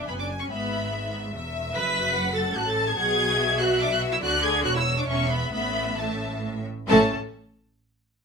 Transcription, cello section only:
0.09 F#2
0.50 G#2
1.33 E2
1.73 F#2
2.55 A2
2.98 B2
4.22 D3
4.64 E2
5.07 E2
5.52 A2
6.89 A2

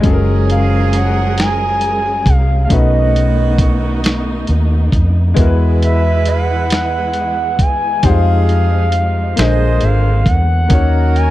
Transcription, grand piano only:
0.00 G#3 C#4 G#4
0.05 F#3 A4
0.13 A#4
2.67 A3 C#4 D#4
2.72 F#4 B4
5.34 G#3 B3 E4
5.39 F#4 A#4
5.47 B4
8.03 G3 D#4 F4 G4 C5
8.09 G#3
9.36 D3 A#3 G#4 C5
10.68 A#3 C#4 D#4
10.73 F#4 C#5

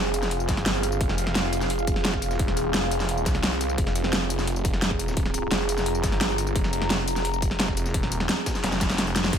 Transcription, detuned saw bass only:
Already playing: F1
0.49 G1
1.01 F1
1.35 F1
2.32 E1
2.59 D#1
2.74 F1
3.26 C2
3.78 F1
4.13 F1
5.52 F1
6.04 G1
6.56 F1
8.64 F1
9.33 F1

